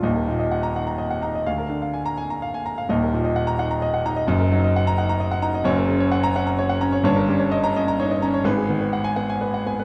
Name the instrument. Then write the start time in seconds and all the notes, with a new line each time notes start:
grand piano
0.02 D#1 D#2 D#5
0.15 A#4
0.28 A#2 D#4
0.39 D#5
0.51 F#5
0.63 A#5
0.75 D#4 F#5
0.87 A#5
0.98 D#5
1.11 F#5
1.22 D#4 A#5
1.35 D#5
1.46 D2 F5
1.58 A#4
1.70 D3
1.82 F5
1.93 G#5
2.06 A#5
2.17 G#5
2.30 A#5
2.42 F5
2.54 G#5
2.66 A#5
2.78 F5
2.89 D#1 D#2 D#5
3.02 A#4
3.13 A#2 D#4
3.25 D#5
3.36 F#5
3.47 A#5
3.59 D#4 F#5
3.71 A#5
3.82 D#5
3.94 F#5
4.05 D#4 A#5
4.16 D#5
4.27 F#1 F#2 D#5
4.40 A#4
4.52 F#3 D#4
4.64 D#5
4.76 F#5
4.87 A#5
4.98 D#4 F#5
5.09 A#5
5.20 D#5
5.31 F#5
5.42 D#4 A#5
5.54 D#5
5.64 F#1 F#2 C#5
5.77 A#4
5.88 C#3 C#4
6.00 C#5
6.12 F#5
6.23 A#5
6.36 C#4 F#5
6.47 A#5
6.59 C#5
6.69 F#5
6.81 C#4 A#5
6.92 C#5
7.03 G1 G2 C#5
7.16 A#4
7.28 G3 C#4
7.40 C#5
7.52 D#5
7.64 A#5
7.76 C#4 D#5
7.88 A#5
8.00 D#4 C#5
8.11 D#5
8.22 C#4 A#5
8.34 C#5
8.44 G#1 G#2 B4
8.57 G#4
8.69 D#3 B3
8.81 B4
8.93 F#5
9.04 G#5
9.16 B3 F#5
9.30 G#5
9.41 B4
9.54 F#5
9.66 B3 G#5
9.79 B4